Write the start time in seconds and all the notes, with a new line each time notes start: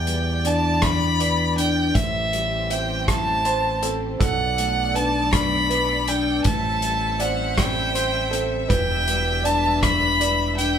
Already playing: E2 E3 B3 G4 B4 D5 G5
0.07 G3, closed hi-hat
0.45 D4 D5 A5, closed hi-hat
0.82 E4 B5, kick, cross-stick, closed hi-hat
1.20 B4 D5, closed hi-hat
1.57 D4 G5, closed hi-hat
1.95 A1 A2 E3 A3 G4 C5 E5, kick, closed hi-hat
2.33 G3, closed hi-hat
2.70 C4 E5 G5, closed hi-hat
3.08 E4 A5, kick, cross-stick, closed hi-hat
3.45 C5, closed hi-hat
3.83 C4 A4, closed hi-hat
4.20 B1 B2 F#3 B3 A4 D5 F#5, kick, closed hi-hat
4.58 A3, closed hi-hat
4.94 D4 B4 A5, closed hi-hat
5.32 B5, kick, cross-stick, closed hi-hat
5.69 B4, closed hi-hat
6.08 D4 G5, closed hi-hat
6.44 A1 A2 G3 C4 E5 A5, kick, closed hi-hat
6.82 G3, closed hi-hat
7.19 C4 D5 F#5, closed hi-hat
7.58 E4 G5, kick, cross-stick, closed hi-hat
7.94 C5, closed hi-hat
8.31 C4 A4, closed hi-hat
8.68 E1 E3 D4 B4 G5, kick, closed hi-hat
9.08 G3, closed hi-hat
9.43 D4 D5 A5, closed hi-hat
9.83 E4 B5, kick, cross-stick, closed hi-hat
10.20 B4 D5, closed hi-hat
10.57 D4 G5, closed hi-hat